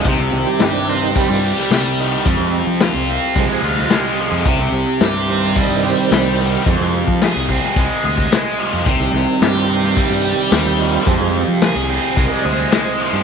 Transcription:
<<
  \new Staff \with { instrumentName = "Tonewheel organ" } { \time 4/4 \key c \minor \tempo 4 = 109 ees'16 f'8 g'16 ees'16 d'8 ees'16 g'16 f'8 g'8 r8. | r2 aes'16 aes'8 f'16 g'8 aes'8 | r4 bes'16 c''8 d''16 ees''8 c''4 bes'8 | aes'8 g'16 f'8 r2 r8. |
r4 g'16 f'16 g'8. f'16 g'8 f'16 g'16 f'8 | g'16 aes'16 g'8 bes'16 aes'8 c''16 bes'16 d''16 c''4. | }
  \new Staff \with { instrumentName = "Tonewheel organ" } { \clef bass \time 4/4 \key c \minor r8 <ees g c'>4. <ees g c'>8 r4. | <f aes c'>8 r4. <f aes c'>8 r4. | r4. <ees g c'>2~ <ees g c'>8 | <f aes c'>8 r2. r8 |
<ees g c'>1 | <f aes c'>8 r2. r8 | }
  \new Staff \with { instrumentName = "Overdriven electric guitar" } { \clef bass \time 4/4 \key c \minor c4 g'8 c'8 g8 g'8 g8 ees8 | f,4 f'8 c'8 aes8 f'8 aes8 f8 | c4 g'8 c'8 g8 g'8 g8 ees8 | f,4 aes'8 c'8 aes8 aes'8 aes8 f8 |
c4 g'8 c'8 g8 g'8 g8 ees8 | f,4 aes'8 c'8 aes8 aes'8 aes8 f8 | }
  \new Staff \with { instrumentName = "Synth drone" } { \clef bass \time 4/4 \key c \minor <c, c>1~ | <c, c>1~ | <c, c>1~ | <c, c>1 |
<c, c>1~ | <c, c>1 | }
  \new Staff \with { instrumentName = "Fingered electric bass" } { \clef bass \time 4/4 \key c \minor c,16 c,16 c,16 r16 g,4~ g,16 g,8 r16 c4 | f,16 f,8 f8 c,8 r16 c,16 r16 d,8 r8. f,16 | c,16 c,16 c,16 r16 g,4~ g,16 g,8 r16 c,4 | f,16 f,8 f8 c,8 r16 c,16 r16 d,8 r8. f,16 |
c,16 c,16 c,16 r16 g,4~ g,16 g,8 r16 ees,4 | f,16 f,8 f8 c,8 r16 c,16 r16 d,8 r8. g,16 | }
  \new DrumStaff \with { instrumentName = "Drums" } \drummode { \time 4/4 <hh bd>4 <hh sn>4 <hh bd>8. sn16 <hh sn>4 | <hh bd>4 <hh sn>4 <hh bd>8. sn16 <hh sn>4 | <hh bd>4 <hh sn>4 <hh bd>4 <hh sn>4 | <hh bd>8. bd16 <hh sn>8 bd16 sn16 <hh bd>8. bd16 <hh sn>4 |
<hh bd>8 sn8 <hh sn>8. sn16 <hh bd>4 <hh sn>4 | <hh bd>4 <hh sn>4 <hh bd>4 <hh sn>4 | }
>>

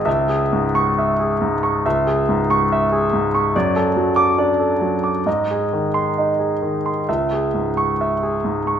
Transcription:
<<
  \new Staff \with { instrumentName = "Grand piano" } { \time 2/4 \key cis \minor \tempo 4 = 68 << { r8. cis'''8 r8. | r8. cis'''8 r8. | r8. d'''8 r8. | r8. bis''8 r8. |
r8. cis'''8 r8. | } \\ { e''16 gis'8 r16 e''16 gis'16 gis,16 cis'''16 | e''16 gis'8 r16 e''16 gis'16 gis,16 cis'''16 | d''16 a'8 r16 d''16 a'8 d'''16 | dis''16 gis'8 r16 dis''16 gis'8 bis''16 |
e''16 gis'8 r16 e''16 gis'8 cis'''16 | } >> }
  \new Staff \with { instrumentName = "Grand piano" } { \clef bass \time 2/4 \key cis \minor cis,8 gis,4 r8 | cis,8 gis,4 r8 | fis,8 fis8 d'8 fis8 | gis,8 dis8 dis'8 dis8 |
cis,8 gis,4 gis,8 | }
>>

